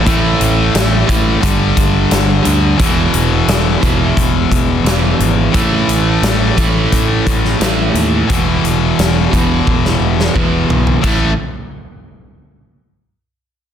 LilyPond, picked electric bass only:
\new Staff \with { instrumentName = "Picked electric bass" } { \clef bass \time 4/4 \key e \minor \tempo 4 = 87 a,,8 a,,8 a,,8 a,,8 g,,8 g,,8 g,,8 d,8 | e,,8 e,,8 e,,8 e,,8 e,,8 e,,8 e,,8 gis,,8 | a,,8 a,,8 a,,8 a,,8 a,,8 a,,8 a,,8 dis,8 | e,,8 e,,8 e,,8 e,,8 e,,8 e,,8 e,,8 b,,8 |
a,,8 r2. r8 | }